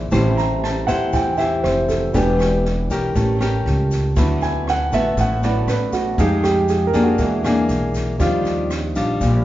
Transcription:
Already playing: D3 G#3 C4 C5 E5
0.11 A1 E3 G3 A3 C4 E4 G4 C5, kick, cross-stick, snare, shaker
0.37 A#5, snare, shaker
0.64 A5, cross-stick, snare
0.87 E2 E4 G4 C5 F#5, kick, snare, shaker
1.13 E2 E3 G5, kick, snare, shaker
1.37 E4 G4 C5 E5, snare, shaker
1.63 F1 C5, cross-stick, snare
1.88 A4, kick, snare, shaker
2.13 E1 E3 G3 B3 D4 F#4 G4, kick, snare, shaker
2.39 cross-stick, snare, shaker
2.65 snare
2.90 B1 C#4 G4 A#4, kick, snare, shaker
3.15 A1 G3 A3 C#4, kick, snare, shaker
3.40 C#4 G4 A#4, cross-stick, snare, shaker
3.66 C#2, snare
3.91 kick, snare, shaker
4.16 D2 D3 F#3 A3 B3 E4 F#4, kick, cross-stick, snare, shaker
4.41 G#5, snare, shaker
4.67 F#5, cross-stick, snare
4.92 A1 A3 B3 F#4 E5, kick, snare, shaker
5.17 A1 A2 F#5, kick, snare, shaker
5.43 F#3 A3 B3 E4 F#4 D5, snare, shaker
5.68 A1 B4, cross-stick, snare, shaker
5.93 F#4, kick, snare, shaker
6.18 F2 F3 G#3 D#4 G4 G#4, kick, snare, shaker
6.43 G4, cross-stick, snare, shaker
6.68 G#4, snare, shaker
6.87 A#4
6.93 F2 A#3 D4 G#4, kick, snare, shaker
7.03 F#4
7.18 E2 E3 G#3 A#3 D4, kick, snare, shaker
7.44 A#3 D4 G#4, cross-stick, snare, shaker
7.69 B1, snare, shaker
7.94 kick, snare, shaker
8.19 D#2 D#3 F3 G3 D4 F4, kick, cross-stick, snare, shaker
8.45 snare, shaker
8.70 cross-stick, snare, shaker
8.95 A#1 G3 D4 F4, kick, snare, shaker
9.21 A#1 A#2, kick, snare, shaker

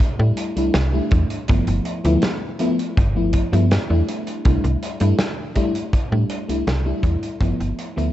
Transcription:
0.00 kick, closed hi-hat
0.19 A2 G3 A3 D4 E4
0.37 closed hi-hat
0.56 C2 G3 A3 D4 E4, closed hi-hat
0.74 C2, snare, closed hi-hat
0.93 G3 A3 D4 E4
1.11 E2, kick, closed hi-hat
1.30 closed hi-hat
1.48 G1 F3 A3 B3 E4, kick, closed hi-hat
1.67 G1, closed hi-hat
1.85 closed hi-hat
2.04 D2 F3 A3 B3 E4, closed hi-hat
2.22 snare, closed hi-hat
2.59 F3 A3 B3 E4, closed hi-hat
2.79 closed hi-hat
2.97 G1, kick, closed hi-hat
3.15 F3 A3 B3 E4
3.33 kick, closed hi-hat
3.52 G2 F3 A3 B3 E4, closed hi-hat
3.71 snare, closed hi-hat
3.89 E2 G3 A3 D4 E4
4.09 closed hi-hat
4.27 closed hi-hat
4.45 C2 G3 A3 D4 E4, kick, closed hi-hat
4.64 C2, closed hi-hat
4.83 closed hi-hat
5.00 G2 G3 A3 D4 E4, closed hi-hat
5.19 snare, closed hi-hat
5.55 G3 A3 D4 E4, kick, closed hi-hat
5.75 closed hi-hat
5.93 kick, closed hi-hat
6.11 A2 G3 A3 D4 E4
6.30 closed hi-hat
6.48 C2 G3 A3 D4 E4, closed hi-hat
6.67 C2, snare, closed hi-hat
6.85 G3 A3 D4 E4
7.03 E2, kick, closed hi-hat
7.23 closed hi-hat
7.40 G1 F3 A3 B3 E4, kick, closed hi-hat
7.60 G1, closed hi-hat
7.79 closed hi-hat
7.96 D2 F3 A3 B3 E4, closed hi-hat

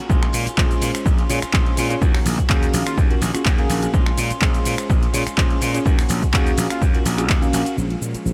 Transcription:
0.01 A#3
0.09 A#1 G#3 C#4 F4 G#4 C5, kick, maracas, shaker
0.23 finger snap, maracas
0.33 A#2, open hi-hat, maracas, shaker
0.46 C#4 F4, muted slap bass stroke, closed hi-hat, maracas, shaker
0.57 A#1 G#3 C#4 F4 G#4 C5, kick, clap, shaker
0.71 closed hi-hat, maracas, shaker
0.81 A#2, open hi-hat, maracas, shaker
0.95 finger snap, closed hi-hat, maracas, shaker
1.06 A#1, kick, maracas, shaker
1.18 C#4 F4, closed hi-hat, maracas
1.29 A#2 G#3 C#4 F4 G#4 C#5, open hi-hat, maracas, shaker
1.42 C#4 F4, finger snap, muted slap bass stroke, closed hi-hat, maracas, shaker
1.53 A#1 G#3 C#4 F4 G#4 C5, kick, clap, shaker
1.66 closed hi-hat, maracas
1.77 A#2 G#3 C#4 F4, open hi-hat, shaker, maracas
1.90 C#4 F4 G#4 C#5, closed hi-hat, maracas, shaker
2.01 D#2 D#3 A#3 C#4 F#4, kick, maracas, shaker
2.15 finger snap, open hi-hat, maracas
2.26 A#1, open hi-hat, maracas, shaker
2.38 A#3 C#4 F#4, muted slap bass stroke, kick, closed hi-hat, shaker, maracas
2.49 D#2 D#3 A#3 C#4 F#4 G#4 F5, kick, clap, maracas, shaker
2.63 closed hi-hat, maracas, shaker
2.74 A#1, open hi-hat, shaker, maracas
2.86 F4, finger snap, closed hi-hat, maracas, shaker
2.97 D#2, kick, shaker, maracas
3.10 A#3 C#4 F4 F#4 A#4, closed hi-hat, maracas
3.21 A#1 D#3 A#3 C#4 F#4, open hi-hat, maracas, shaker
3.34 A#3 C#4 F4 F#4 G#4, finger snap, muted slap bass stroke, closed hi-hat, maracas, shaker
3.45 D#2 D#3 A#3 C#4 F#4 G#4, kick, clap, maracas, shaker
3.58 C#4 F#4 A#4 F5, closed hi-hat, maracas
3.69 A#1 D#3 A#3 C#4 F#4, open hi-hat, maracas, shaker
3.82 A#3 C#4 F#4, closed hi-hat, maracas, shaker
3.93 A#1 G#3 C#4 F4, kick, maracas, shaker
4.06 finger snap, maracas
4.18 A#2, open hi-hat, maracas, shaker
4.30 C#4 F4, muted slap bass stroke, closed hi-hat, maracas, shaker
4.41 A#1 G#3 C#4 F4 G#4 C5, kick, clap, maracas, shaker
4.54 closed hi-hat, shaker, maracas
4.65 A#2, open hi-hat, maracas, shaker
4.78 finger snap, closed hi-hat, maracas, shaker
4.90 A#1, kick, maracas, shaker
5.02 C#4 F4, closed hi-hat, maracas
5.13 A#2 G#3 C#4 F4 G#4 C#5, open hi-hat, maracas, shaker
5.27 finger snap, muted slap bass stroke, closed hi-hat, maracas, shaker
5.37 A#1 G#3 C#4 F4 G#4 C5, kick, clap, maracas, shaker
5.50 closed hi-hat, maracas
5.61 A#2 G#3 C#4 F4, open hi-hat, maracas, shaker
5.74 C#4 F4 G#4 C#5, closed hi-hat, maracas, shaker
5.85 D#2 A#3 C#4 F4 F#4 A#4, kick, maracas, shaker
5.98 finger snap, open hi-hat, maracas, shaker
6.09 A#1, open hi-hat, maracas, shaker
6.22 C#4 F#4, muted slap bass stroke, kick, closed hi-hat, maracas, shaker
6.33 D#2 A#3 C#4 F#4 G#4 F5, kick, clap, maracas, shaker
6.47 closed hi-hat, maracas, shaker
6.57 A#1, open hi-hat, maracas, shaker
6.70 F4, finger snap, closed hi-hat, maracas, shaker
6.81 D#2, kick, maracas, shaker
6.94 C#4 F4 F#4 A#4, closed hi-hat, maracas
7.05 A#1 A#3 C#4 F#4, open hi-hat, maracas, shaker
7.18 C#4 F4 F#4 G#4, finger snap, closed hi-hat, maracas, shaker
7.29 D#2 A#3 C#4 F#4, kick, clap, maracas, shaker
7.42 C#4 F#4 A#4 F5, closed hi-hat, maracas, shaker
7.53 A#1 A#3 C#4 F#4, open hi-hat, maracas, shaker
7.65 C#4 F#4, closed hi-hat, maracas, shaker
7.77 A#1 F3 G#3 C#4 G#4, shaker
7.81 F4
7.90 closed hi-hat
8.01 A#2, shaker
8.14 muted slap bass stroke, closed hi-hat, shaker
8.25 A#1 C#4 F4 G#4 C5, shaker

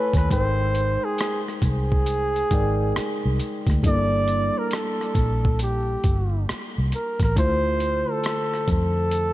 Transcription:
Already playing: A3 E4 B4 C#5 G#5
0.14 D#2 B4, kick, cross-stick, closed hi-hat
0.30 G#1 G#3 D#4 A#4 C5 G5, kick, closed hi-hat
0.35 C5
0.75 closed hi-hat
1.04 G#4
1.18 cross-stick, closed hi-hat
1.48 cross-stick
1.62 C2 G#4, kick, closed hi-hat
1.92 kick
2.06 closed hi-hat
2.36 closed hi-hat
2.51 G#1 G#3 D#4 A#4 D5 G5, kick, closed hi-hat
2.96 muted fingered electric bass stroke, cross-stick, closed hi-hat
3.25 C2
3.40 closed hi-hat
3.67 D2, kick, cross-stick, closed hi-hat
3.83 G1 G3 D4 E4 A4, kick, closed hi-hat
3.88 A#3 D5
4.28 closed hi-hat
4.58 A#4
4.71 cross-stick, closed hi-hat
4.75 A4
5.01 cross-stick
5.15 A#1, kick, closed hi-hat
5.45 kick
5.59 G4, closed hi-hat
6.04 G1, kick, closed hi-hat
6.49 muted fingered electric bass stroke, cross-stick, closed hi-hat
6.78 C2
6.92 A#4, closed hi-hat
7.20 A1 A#4, kick, cross-stick, closed hi-hat
7.36 D2 D3 A3 E4 C5, kick, closed hi-hat
7.40 F4 C5
7.80 closed hi-hat
8.11 A4
8.24 cross-stick, closed hi-hat
8.54 cross-stick
8.68 F2, kick, closed hi-hat
8.72 A4
9.12 closed hi-hat

